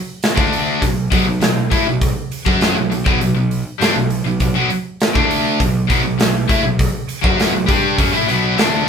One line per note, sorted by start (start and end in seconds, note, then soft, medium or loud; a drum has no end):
0.23 snare loud
0.23 open hi-hat medium
0.35 0.79 D2 loud
0.35 0.80 D3 medium
0.35 0.81 A3 medium
0.35 0.81 D4 medium
0.35 kick loud
0.53 open hi-hat medium
0.81 1.10 B1 medium
0.81 1.05 B2 medium
0.81 1.06 F#3 medium
0.81 kick medium
0.81 open hi-hat medium
1.11 1.26 B1 medium
1.11 1.25 B2 medium
1.11 1.25 F#3 loud
1.11 kick loud
1.11 open hi-hat medium
1.26 1.41 B1 medium
1.26 1.39 B2 medium
1.26 1.40 F#3 medium
1.41 1.70 B1 medium
1.41 1.65 B2 medium
1.41 1.66 F#3 medium
1.41 snare loud
1.41 open hi-hat medium
1.70 1.86 A2 medium
1.70 1.85 A3 medium
1.70 1.86 E4 medium
1.70 kick loud
1.70 open hi-hat medium
1.86 2.14 B1 medium
1.86 2.10 B2 medium
1.86 2.10 F#3 medium
2.01 kick loud
2.01 open hi-hat medium
2.32 open hi-hat medium
2.45 2.74 F#2 medium
2.45 2.74 F#3 medium
2.45 2.75 C#4 medium
2.45 2.75 F#4 medium
2.45 kick loud
2.61 snare loud
2.61 open hi-hat medium
2.75 2.90 B1 medium
2.75 2.89 B2 medium
2.75 2.89 F#3 medium
2.90 3.05 B1 medium
2.90 3.03 B2 medium
2.90 3.04 F#3 medium
2.90 open hi-hat medium
3.04 3.19 B1 medium
3.04 3.18 B2 medium
3.04 3.19 F#3 medium
3.04 kick loud
3.19 3.34 B1 medium
3.19 3.34 B2 medium
3.19 3.33 F#3 medium
3.19 open hi-hat medium
3.35 3.63 B1 medium
3.35 3.59 B2 medium
3.35 3.59 F#3 medium
3.51 open hi-hat medium
3.78 3.94 G2 medium
3.78 3.94 G3 medium
3.78 3.94 D4 medium
3.78 snare loud
3.78 open hi-hat medium
3.94 4.23 B1 medium
3.94 4.19 B2 medium
3.94 4.19 F#3 medium
4.10 open hi-hat medium
4.25 4.39 B1 medium
4.25 4.39 B2 medium
4.25 4.40 F#3 medium
4.40 4.54 B1 medium
4.40 4.53 B2 medium
4.40 4.54 F#3 medium
4.40 kick medium
4.40 open hi-hat medium
4.54 4.69 B1 medium
4.54 4.69 B2 medium
4.54 4.69 F#3 medium
4.70 muted distorted electric guitar stroke medium
4.70 muted overdriven electric guitar stroke medium
4.70 muted picked electric bass stroke soft
4.70 open hi-hat soft
5.00 snare loud
5.00 open hi-hat medium
5.14 5.57 D2 medium
5.14 5.58 D3 medium
5.14 5.59 A3 medium
5.14 5.59 D4 medium
5.14 kick loud
5.31 open hi-hat medium
5.60 5.88 B1 medium
5.60 5.84 B2 medium
5.60 5.84 F#3 medium
5.60 kick medium
5.60 open hi-hat medium
5.87 6.04 B1 medium
5.87 6.02 B2 medium
5.87 6.02 F#3 medium
5.87 kick medium
5.87 open hi-hat medium
6.03 6.18 B1 medium
6.03 6.17 B2 medium
6.03 6.17 F#3 medium
6.18 6.48 B1 medium
6.18 6.42 B2 medium
6.18 6.43 F#3 medium
6.18 snare loud
6.18 open hi-hat medium
6.48 6.63 A2 medium
6.48 6.62 A3 medium
6.48 6.63 E4 medium
6.48 kick loud
6.48 open hi-hat medium
6.62 6.92 B1 medium
6.62 6.87 B2 medium
6.62 6.87 F#3 medium
6.79 kick medium
6.79 open hi-hat medium
7.09 open hi-hat medium
7.22 7.52 F#2 medium
7.22 7.50 F#3 medium
7.22 7.51 C#4 medium
7.22 7.52 F#4 loud
7.22 kick loud
7.40 snare loud
7.40 open hi-hat medium
7.51 7.68 B1 medium
7.51 7.67 B2 medium
7.51 7.66 F#3 medium
7.66 7.96 G2 medium
7.66 7.96 G3 medium
7.66 7.97 D4 medium
7.66 7.97 G4 medium
7.66 kick loud
7.66 open hi-hat medium
7.96 8.12 F#2 medium
7.96 8.11 F#3 medium
7.96 8.12 C#4 loud
7.96 kick loud
7.96 open hi-hat medium
8.12 8.27 A2 medium
8.12 8.26 A3 medium
8.12 8.27 E4 medium
8.26 8.56 B1 medium
8.26 8.56 B2 medium
8.26 8.56 F#3 medium
8.26 8.57 B3 loud
8.26 open hi-hat medium
8.57 8.86 D2 medium
8.57 8.86 D3 medium
8.57 8.87 A3 medium
8.57 8.87 D4 loud
8.57 snare loud
8.57 open hi-hat medium